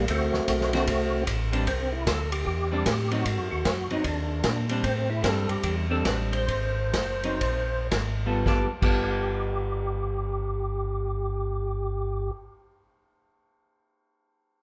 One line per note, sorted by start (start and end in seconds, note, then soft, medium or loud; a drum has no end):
0.08 0.32 D2 medium
0.08 1.24 A3 medium
0.08 1.24 C4 medium
0.08 1.24 F#4 medium
0.08 kick soft
0.08 ride medium
0.34 0.41 D2 soft
0.34 snare soft
0.48 0.86 B1 medium
0.48 kick soft
0.48 hi-hat pedal medium
0.48 ride medium
0.61 snare soft
0.73 0.86 D3 medium
0.73 0.86 A3 medium
0.73 0.86 C4 medium
0.73 0.86 F#4 medium
0.73 snare soft
0.73 ride soft
0.87 1.26 C2 medium
0.87 kick soft
0.87 ride medium
1.27 1.66 A1 medium
1.27 kick soft
1.27 hi-hat pedal medium
1.27 ride medium
1.52 1.65 G3 medium
1.52 1.65 C4 medium
1.52 1.66 D4 medium
1.52 ride soft
1.67 2.05 C2 medium
1.67 1.93 C4 medium
1.67 kick soft
1.67 ride medium
1.92 2.05 E4 medium
2.07 2.45 D2 medium
2.07 2.30 A4 medium
2.07 kick soft
2.07 snare medium
2.07 hi-hat pedal medium
2.07 ride medium
2.32 2.45 G4 medium
2.32 ride medium
2.46 2.84 E2 medium
2.46 3.13 G4 medium
2.46 kick soft
2.71 2.84 G3 medium
2.71 2.84 C4 medium
2.71 2.85 D4 medium
2.86 3.24 A2 medium
2.86 kick soft
2.86 snare medium
2.86 hi-hat pedal soft
2.86 ride medium
3.11 3.24 F#3 medium
3.11 3.24 C4 medium
3.11 3.24 D#4 medium
3.11 3.48 F#4 medium
3.11 ride soft
3.26 3.38 G#2 medium
3.26 kick soft
3.26 ride medium
3.38 3.51 F#2 medium
3.51 3.64 D#2 medium
3.51 3.88 F#4 medium
3.65 3.88 F#2 medium
3.65 kick soft
3.65 snare medium
3.65 hi-hat pedal soft
3.65 ride medium
3.90 3.98 F#2 soft
3.90 4.03 F#3 medium
3.90 4.03 C4 medium
3.90 4.04 D#4 medium
3.90 ride soft
4.04 4.43 D#2 medium
4.04 4.66 D4 medium
4.04 kick soft
4.04 ride medium
4.44 4.82 A#2 medium
4.44 kick soft
4.44 snare medium
4.44 hi-hat pedal medium
4.44 ride medium
4.69 4.82 G3 medium
4.69 4.83 C4 medium
4.69 4.83 D4 medium
4.69 ride soft
4.84 5.22 A2 medium
4.84 5.10 C4 medium
4.84 kick soft
4.84 ride medium
5.10 5.23 E4 medium
5.22 5.47 G2 medium
5.22 5.84 G3 medium
5.22 5.85 C4 medium
5.22 5.85 D4 medium
5.22 5.49 A4 medium
5.22 kick soft
5.22 snare medium
5.22 hi-hat pedal soft
5.22 ride medium
5.49 5.56 G2 soft
5.49 5.63 G4 medium
5.49 ride soft
5.63 6.04 E2 medium
5.63 5.76 G4 loud
5.63 kick soft
5.63 ride medium
5.90 6.45 G3 medium
5.90 6.45 C4 medium
5.90 6.46 D4 medium
5.90 6.05 A4 medium
6.05 6.47 A1 medium
6.05 6.18 B4 medium
6.05 kick soft
6.05 snare medium
6.05 hi-hat pedal medium
6.05 ride medium
6.33 7.87 C5 medium
6.33 ride soft
6.48 6.92 G#1 medium
6.48 kick soft
6.48 ride soft
6.93 7.39 F#1 medium
6.93 kick soft
6.93 snare medium
6.93 hi-hat pedal medium
6.93 ride medium
7.23 7.39 F#3 medium
7.23 7.39 C4 medium
7.23 7.40 D#4 medium
7.23 ride soft
7.41 7.90 A#1 medium
7.41 kick soft
7.41 ride medium
7.91 8.44 G#1 medium
7.91 kick soft
7.91 snare medium
7.91 hi-hat pedal medium
7.91 ride medium
8.26 8.43 G3 medium
8.26 8.44 B3 medium
8.26 8.44 F4 medium
8.26 8.44 A4 medium
8.44 8.66 G1 medium
8.44 8.67 G3 medium
8.44 8.68 B3 medium
8.44 8.68 F4 medium
8.44 8.66 G4 medium
8.44 8.69 A4 medium
8.44 kick soft
8.44 snare soft
8.81 12.30 G1 medium
8.81 12.33 G3 medium
8.81 12.35 B3 medium
8.81 12.35 F4 medium
8.81 12.31 G4 medium
8.81 12.36 A4 medium
8.81 kick medium
8.81 crash medium